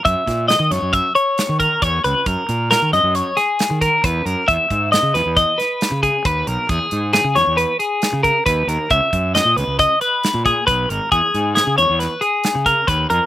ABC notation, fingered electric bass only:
X:1
M:5/4
L:1/16
Q:1/4=136
K:Elyd
V:1 name="Fingered electric bass" clef=bass
F,, z A,,3 D, F,, F,,2 z4 D,2 z E,,2 C,, z | F,, z A,,3 D, F,, F,,2 z4 D,2 z E,,2 F,, z | E,, z G,,3 C, E,, E,,2 z4 C,2 z D,,2 B,,, z | E,, z G,,3 C, E,, E,,2 z4 C,2 z D,,2 D,, z |
C,, z F,,3 A,, C,, C,,2 z4 A,,2 z B,,,2 G,,, z | E,, z G,,3 C, E,, E,,2 z4 C,2 z D,,2 =F,, z |]